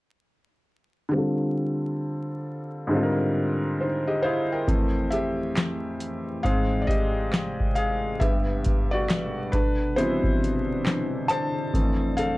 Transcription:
1.09 D3 G3
1.13 C4 F4
1.18 A4
2.87 G#2 D3 G3
2.93 C4 F4 A4
3.03 A#4
3.81 D#4 C5
4.07 G4 D#5
4.22 E4 G#4 C5 F5
4.52 A#4 G5
4.67 F2 E3 A3 E4 G5, kick, closed hi-hat
5.11 G4 E5, closed hi-hat
5.57 snare, clap, closed hi-hat
6.00 closed hi-hat
6.43 G#2 C3 G#3 C4 G#4 A#4 F5, kick, closed hi-hat
6.82 D5
6.87 G4 D#5, kick, closed hi-hat
7.33 snare, clap, closed hi-hat
7.60 kick
7.75 G#4 F5, closed hi-hat
8.20 G2 B2 G3 B3 G4 A4 E5 F#5, kick, closed hi-hat
8.64 kick, closed hi-hat
8.91 F#4 D5
9.10 snare, clap, closed hi-hat
9.52 D3 E3 D4 B4 D5, kick, closed hi-hat
9.96 B2 C3 E3 E4 C5, closed hi-hat
10.24 kick
10.44 closed hi-hat
10.86 snare, clap, closed hi-hat
11.28 C5 A5, closed hi-hat
11.73 F2 C3 E3 G3 A3 A4 F5, kick, closed hi-hat
12.17 A4 F5, closed hi-hat

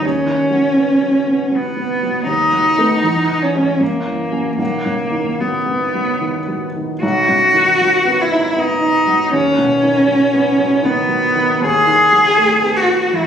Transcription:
0.02 D#2 C#4
0.26 D#3
0.50 F#3
0.77 B3
1.03 F#3
1.27 B3
1.51 F#3
1.55 B3
1.77 B3
2.03 F#3
2.26 D#2 D#4
2.52 F#3
2.78 A3 B3
3.04 E2
3.28 E3
3.42 C#4
3.55 G#3 C#4
3.80 F#2 A#3
4.06 E3
4.32 F#3 C#4
4.58 B1 A#3
4.85 F#2
5.12 D#3
5.40 F#3 B3
5.66 B3
5.95 F#3
6.21 D#3
6.48 F#3
6.76 D#3
7.02 B1 F#4
7.28 F#2
7.54 D#3
7.80 F#3
8.05 B3
8.21 E4
8.31 D#4
8.56 B3 D#4
8.81 D#4
9.07 F#3
9.33 D#2 C#4
9.58 B2
9.83 D#3
10.07 F#3
10.34 B3
10.58 F#3
10.82 D#3 B3
11.09 F#3
11.35 D#3
11.61 D#2
11.66 G#4
11.87 D#3
12.12 F#3
12.37 A3
12.62 B3
12.76 F#4
12.88 F#4
13.13 E2 E4
13.23 F#4

